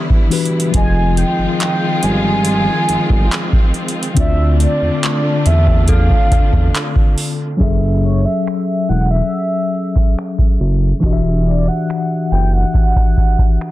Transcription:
Already playing: string section D3 E3 G3 B3 E4, tine electric piano E3 D4 E4 G4 E5, synth bell D5, soft synth lead E5
0.10 kick
0.30 tine electric piano E3 D4 F#4 G4 B4, closed hi-hat, open hi-hat
0.45 closed hi-hat
0.60 closed hi-hat
0.71 analog synth bass F1, string section D#3 F3 G#3 C4 F4, tine electric piano F3 C4 F4, soft synth lead G#5, kick, closed hi-hat
0.76 tine electric piano G#4 D#5
1.17 soft synth lead G5, closed hi-hat
1.39 analog synth bass G1
1.60 soft synth lead G5, clap, closed hi-hat
2.03 analog synth bass G1, soft synth lead G#5, closed hi-hat
2.45 closed hi-hat
2.89 analog synth bass G1, closed hi-hat
3.10 analog synth bass G1, kick
3.32 clap, closed hi-hat
3.53 kick
3.74 closed hi-hat
3.88 closed hi-hat
4.03 closed hi-hat
4.14 analog synth bass D2, tine electric piano D3 C4 D4, string section D3 A3 D4 F4, soft synth lead E5, kick, closed hi-hat
4.19 tine electric piano F4 D5
4.60 soft synth lead D5, closed hi-hat
4.82 analog synth bass E2
5.03 clap, closed hi-hat
5.46 analog synth bass E2, soft synth lead E5, closed hi-hat
5.67 kick
5.88 synth bell A4, soft synth lead F5, kick, closed hi-hat
6.10 kick
6.31 analog synth bass E2, kick, closed hi-hat
6.53 analog synth bass E2, kick
6.75 clap, closed hi-hat
6.96 kick
7.18 open hi-hat
7.57 analog synth bass F#1, tine electric piano F#3 C#4 G#4, kick, closed hi-hat, crash
7.61 tine electric piano A4 E5
8.03 soft synth lead C#5, closed hi-hat
8.25 soft synth lead E5
8.46 finger snap, closed hi-hat
8.89 analog synth bass E1, soft synth lead F#5, closed hi-hat
9.11 soft synth lead E5
9.31 closed hi-hat
9.75 closed hi-hat
9.96 kick
10.18 finger snap, closed hi-hat
10.39 kick
10.60 analog synth bass F#1, closed hi-hat
10.74 closed hi-hat
10.88 closed hi-hat
11.00 analog synth bass E1, tine electric piano E3 D4 F#4, kick, closed hi-hat
11.05 tine electric piano G4 D#5
11.13 tine electric piano E5
11.46 soft synth lead D5, closed hi-hat
11.68 soft synth lead F#5
11.89 finger snap, closed hi-hat
12.31 analog synth bass F#1, soft synth lead G5, closed hi-hat
12.53 soft synth lead F#5
12.73 kick, closed hi-hat
12.96 kick
13.17 kick, closed hi-hat
13.38 kick
13.61 finger snap

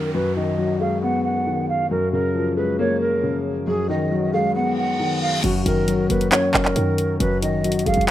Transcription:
Already playing: grand piano F#2 D#3 F#3 A#3 C#4, flute A#4, downlifter
0.14 grand piano F#2, flute B4
0.36 grand piano D#3, flute D#5
0.58 grand piano F#3
0.80 grand piano G#3, flute F5
1.03 grand piano B3, flute F#5
1.24 flute F#5
1.47 grand piano D#3
1.69 flute F5
1.90 grand piano F#2, ambient pad F#2 F3 G#4 C#5, flute A#4
2.13 grand piano C#3, flute A#4
2.35 grand piano F3
2.57 grand piano G#3, flute B4
2.79 grand piano A#3, flute C#5
3.01 flute A#4
3.23 grand piano C#3
3.67 grand piano F#2, ambient pad F#3 A#4 B4, flute G#4
3.89 grand piano D#3, flute D#5
4.11 grand piano F#3
4.33 grand piano G#3, flute F5
4.55 grand piano B3, flute F#5, reverse cymbal
4.78 flute F#5
5.00 grand piano D#3
5.22 flute F5
5.44 808-style bass F#1, grand piano F#2, flute F#4, closed hi-hat, crash
5.66 808-style bass F#1, grand piano D#3, flute A#4, closed hi-hat
5.88 grand piano F#3, closed hi-hat
6.10 808-style bass F#1, grand piano A#3, flute B4, closed hi-hat
6.21 closed hi-hat
6.32 grand piano C#4, flute C#5, clap, closed hi-hat
6.54 808-style bass F#1, flute A#4, clap
6.65 clap
6.76 808-style bass F#2, grand piano D#3, closed hi-hat
6.98 closed hi-hat
7.20 808-style bass F#1, grand piano F#2, flute B4, closed hi-hat
7.42 grand piano D#3, flute D#5, closed hi-hat
7.64 grand piano F#3, closed hi-hat
7.72 closed hi-hat
7.79 closed hi-hat
7.86 808-style bass F#1, grand piano G#3, flute F5, closed hi-hat
7.94 808-style bass F#1, closed hi-hat
8.01 closed hi-hat

